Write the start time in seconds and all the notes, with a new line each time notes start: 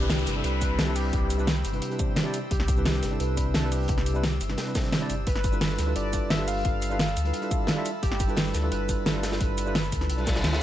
Already playing: C2 C4 G4 B5 E6, downlifter
0.00 C3 G3 D4 E4 B4, shaker
0.10 snare, closed hi-hat
0.18 snare, shaker
0.26 G1, snare, closed hi-hat, shaker
0.35 C3 G3 D4 E4 A4
0.44 C2 B4, closed hi-hat
0.60 C3 G3 D4 E4 B4, kick, closed hi-hat, shaker
0.79 A4, snare, closed hi-hat
0.85 C3 G3 D4 E4
0.90 B4
0.96 G4, closed hi-hat, open hi-hat, shaker
1.13 C2, kick, closed hi-hat
1.30 closed hi-hat, shaker
1.38 C3 G3 D4 E4 B4, shaker
1.47 snare, closed hi-hat
1.56 shaker
1.65 G1, closed hi-hat, shaker
1.72 C3 G3 D4 E4 B4, closed hi-hat
1.82 closed hi-hat
1.90 C3 G3 D4 E4 B4, closed hi-hat
1.98 C3 G3 D4 E4 C5, kick, closed hi-hat, shaker
2.16 snare, closed hi-hat
2.24 C3 G3 D4 E4 D5
2.34 closed hi-hat, shaker
2.51 C2 G4, kick, closed hi-hat
2.60 snare
2.68 kick, closed hi-hat, shaker
2.76 C3 G3 D4 E4 B4, shaker
2.85 snare, closed hi-hat
2.93 snare, shaker
3.03 G1, snare, closed hi-hat, shaker
3.10 C3 G3 D4 E4 A4
3.20 C2 B4, closed hi-hat
3.36 C3 G3 D4 E4 B4, kick, closed hi-hat, shaker
3.54 A4, snare, closed hi-hat
3.61 C3 G3 D4 E4
3.66 B4
3.72 G4, closed hi-hat, open hi-hat, shaker
3.88 C2, kick, closed hi-hat
3.98 snare
4.06 closed hi-hat, shaker
4.14 C3 G3 D4 E4 B4, shaker
4.23 snare, closed hi-hat
4.32 shaker
4.41 G1, closed hi-hat, shaker
4.48 C3 G3 D4 E4 B4, snare, closed hi-hat
4.58 snare, closed hi-hat
4.66 C3 G3 D4 E4 B4, closed hi-hat
4.74 C3 G3 D4 E4, kick, snare, closed hi-hat, shaker
4.84 snare, shaker
4.92 snare, closed hi-hat
5.00 C3 G3 D4 E4 D5
5.10 G1, closed hi-hat, shaker
5.27 G1 A4 B4 B5, kick, closed hi-hat
5.35 snare
5.44 kick, closed hi-hat, shaker
5.52 G3 D4 E4 F4 A4 B4, shaker
5.61 snare, closed hi-hat
5.70 snare, shaker
5.78 D2, snare, closed hi-hat, shaker
5.86 G3 D4 E4 F4 A4 B4
5.96 G1 D5, closed hi-hat
6.12 G3 D4 E4 F4 A4 B4, kick, closed hi-hat, shaker
6.30 E5, snare, closed hi-hat
6.37 G3 D4 F4 G4
6.41 A4 B4
6.48 F5, closed hi-hat, open hi-hat, shaker
6.65 G1, kick, closed hi-hat
6.82 closed hi-hat, shaker
6.90 G3 D4 E4 F4 A4 B4, shaker
6.99 snare, closed hi-hat
7.08 shaker
7.16 D2, closed hi-hat, shaker
7.24 G3 D4 E4 F4 A4 B4, closed hi-hat
7.33 closed hi-hat
7.41 G3 D4 E4 F4 A4 B4, closed hi-hat
7.50 G3 D4 E4 F4 A4 D5, kick, closed hi-hat, shaker
7.67 snare, closed hi-hat
7.76 G3 D4 E4 F4 A4 E5
7.85 closed hi-hat, shaker
8.02 G1 G4, kick, closed hi-hat
8.12 snare
8.20 kick, closed hi-hat, shaker
8.28 G3 D4 E4 F4 A4 B4, shaker
8.37 snare, closed hi-hat
8.46 snare, shaker
8.54 D2, snare, closed hi-hat, shaker
8.62 G3 D4 E4 F4 A4 B4
8.72 G1 B4, closed hi-hat
8.88 G3 D4 E4 F4 A4 B4, kick, closed hi-hat, shaker
9.06 A4, snare, closed hi-hat
9.13 G3 D4 E4 F4
9.17 A4 B4
9.23 snare, closed hi-hat, shaker
9.32 C5, snare, closed hi-hat
9.41 G1 B4, kick, closed hi-hat
9.58 closed hi-hat, shaker
9.65 G3 D4 E4 F4 A4 B4, shaker
9.75 snare, closed hi-hat
9.84 shaker
9.92 D2, kick, closed hi-hat, shaker
10.00 G3 D4 E4 F4 A4 B4, snare, closed hi-hat
10.10 B1, closed hi-hat, reverse cymbal
10.17 G3 D4 E4 F4 A4 B4, closed hi-hat
10.26 G3 D4 E4 F4 A4 D5, kick, snare, closed hi-hat, shaker
10.35 snare, closed hi-hat, shaker
10.44 D2, snare, closed hi-hat
10.52 G3 D4 E4 F4 A4 E5, snare, closed hi-hat